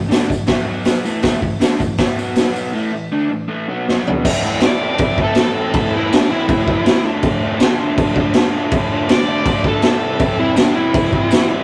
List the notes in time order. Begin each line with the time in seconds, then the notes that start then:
0.09 D3 A3 D4, snare, open hi-hat, tambourine
0.28 A2 E3, kick, tambourine
0.47 A2 E3 A3, kick, snare, open hi-hat
0.65 B2 F#3 B3
0.85 snare, open hi-hat, tambourine
1.05 A2 E3 A3, tambourine
1.22 A2 E3 A3, kick, snare, open hi-hat, tambourine
1.42 A2 E3, kick, tambourine
1.60 D3 A3 D4, snare, open hi-hat, tambourine
1.80 A2 E3, kick, tambourine
1.98 A2 E3 A3, kick, snare, open hi-hat
2.18 B2 F#3 B3, tambourine
2.35 B2 F#3 B3, snare, open hi-hat, tambourine
2.56 tambourine
2.73 A2 E3 A3
2.92 A2 E3
3.12 D3 A3 D4
3.30 A2 E3
3.48 A2 E3 A3
3.68 B2 F#3 B3
3.87 B2 F#3 B3, snare
4.07 floor tom
4.25 A2 E3 A3 C4 E4, kick, crash
4.44 A2 E3 A3 C4 E4
4.60 A2 E3 A3, snare, crash
4.64 C4 E4 D5
4.82 A2 E3 A3 C4 E4
4.98 A2 E3 A3, kick, crash
5.03 C4 E4
5.18 A2 E3 A3 C4 E4, kick
5.23 A4
5.35 A2 E3, snare, crash
5.39 A3 C4 E4 A4
5.58 A2 E3 A3 C4 E4
5.73 A2 E3 A3 C4 E4, kick, crash
5.91 A2 E3 A3 C4 E4
5.96 E4
6.09 A2 E3 A3 C4 E4, crash
6.13 D4, snare
6.28 A2 E3 A3 C4 E4
6.47 A2 E3 A3 C4 E4, kick, crash
6.67 A2 E3 A3 C4 E4, kick
6.84 A2 E3 A3 C4 E4, snare, crash
7.04 D3 A3 D4 F4
7.23 D3 A3 D4 F4, kick, crash
7.43 D3 A3 D4 F4
7.60 D3 A3 D4 F4, snare, crash
7.80 D3 A3 D4 F4
7.98 D3 A3 D4, kick, crash
8.02 F4
8.16 D3 A3 D4 F4, kick
8.34 D3 A3 D4, snare, crash
8.39 F4
8.56 D3 A3 D4 F4
8.71 D3 A3, kick, crash
8.76 D4 F4
8.92 D3 A3 D4 F4
9.09 D3 A3 D4 F4 D5, snare, crash
9.26 D3 A3 D4 F4
9.46 D3 A3 D4 F4, kick, crash
9.64 D3 A3 D4 F4 A4, kick
9.82 D3 A3 D4 F4 A4, snare, crash
10.00 C3 E3 G3 C4 E4
10.19 C3 E3 G3 C4 E4, kick, crash
10.39 C3 E3 G3 C4 E4
10.56 C3 E3 G3 C4 D4 E4, snare, tambourine, crash
10.75 C3 E3 G3 C4 E4
10.94 C3 E3 G3 C4 E4, kick, crash
11.13 C3 E3 G3 C4 E4, kick
11.31 C3 E3 G3 C4 E4, snare, tambourine, crash
11.49 C3 E3 G3 C4 E4